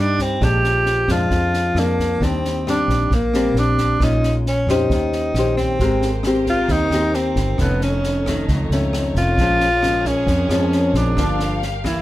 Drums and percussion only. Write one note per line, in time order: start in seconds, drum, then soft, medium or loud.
0.19 kick soft
0.19 snare soft
0.41 kick medium
0.41 cross-stick medium
0.41 snare soft
0.64 snare soft
0.86 snare soft
1.08 kick soft
1.08 cross-stick medium
1.08 snare soft
1.30 kick medium
1.30 snare soft
1.53 snare soft
1.76 cross-stick medium
1.76 snare soft
1.99 kick soft
1.99 snare soft
2.21 kick medium
2.21 snare soft
2.45 snare soft
2.67 cross-stick medium
2.67 snare soft
2.89 kick soft
2.89 snare soft
3.11 kick medium
3.11 snare soft
3.34 cross-stick medium
3.34 snare soft
3.56 snare soft
3.78 kick soft
3.78 snare soft
4.00 kick medium
4.00 cross-stick soft
4.00 snare soft
4.23 snare soft
4.46 snare soft
4.68 kick soft
4.68 cross-stick medium
4.68 snare soft
4.90 kick medium
4.90 snare soft
5.12 snare soft
5.35 cross-stick medium
5.35 snare soft
5.57 kick soft
5.57 snare soft
5.79 kick soft
5.79 snare soft
6.02 snare soft
6.23 cross-stick medium
6.23 snare soft
6.46 kick soft
6.46 snare soft
6.68 kick medium
6.68 snare soft
6.91 cross-stick medium
6.91 snare soft
7.14 snare soft
7.36 kick soft
7.36 snare soft
7.58 kick medium
7.58 cross-stick medium
7.58 snare soft
7.81 snare soft
8.03 snare soft
8.26 kick soft
8.26 cross-stick medium
8.26 snare soft
8.48 kick medium
8.48 snare soft
8.71 snare soft
8.93 cross-stick medium
8.93 snare soft
9.16 kick soft
9.16 snare soft
9.37 kick medium
9.37 snare soft
9.60 snare soft
9.83 cross-stick medium
9.83 snare soft
10.05 kick soft
10.05 snare soft
10.27 kick medium
10.27 snare soft
10.49 cross-stick medium
10.49 snare soft
10.72 snare soft
10.94 kick soft
10.94 snare soft
11.17 kick medium
11.17 cross-stick medium
11.17 snare soft
11.39 snare soft
11.62 snare soft
11.84 kick soft
11.84 cross-stick medium
11.84 snare soft